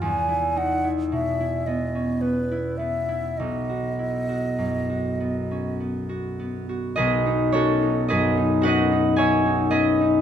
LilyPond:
<<
  \new Staff \with { instrumentName = "Flute" } { \time 3/4 \key b \mixolydian \tempo 4 = 54 gis''8 fis''8 e''8 dis''8 b'8 e''8 | dis''2 r4 | r2. | }
  \new Staff \with { instrumentName = "Harp" } { \time 3/4 \key b \mixolydian << { r2. | r2. | <gis' b' dis''>8 <fis' a' cis''>8 <gis' b' dis''>8 <fis' b' dis'' fis''>8 <gis' cis'' e'' gis''>8 <gis' b' dis''>8 | } \\ { e,16 e'16 dis'16 e'16 b,16 e'16 b16 cis'16 b16 e'16 b16 e'16 | b,,16 fis'16 e'16 fis'16 fis,16 fis'16 b16 cis'16 b16 fis'16 b16 fis'16 | b,,16 dis'16 cis'16 dis'16 fis,16 dis'16 cis'16 dis'16 cis'16 dis'16 cis'16 dis'16 | } >> }
>>